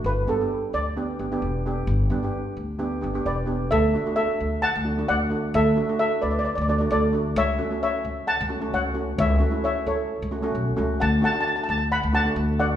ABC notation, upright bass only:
X:1
M:4/4
L:1/16
Q:"Swing 16ths" 1/4=132
K:D
V:1 name="Upright bass" clef=bass
G,,,2 G,,4 D,,4 G,,,2 E,,,4 | G,,,2 G,,4 D,,4 G,,,2 E,,,4 | D,,2 z4 D,,3 D,,3 D,,4 | D,,2 z4 D,,3 D,,3 D,,4 |
C,,2 z4 C,,3 C,,3 C,,4 | C,,2 z4 C,,3 C,,3 B,,,2 C,,2 | D,,2 z4 D,,3 D,,3 D,,4 |]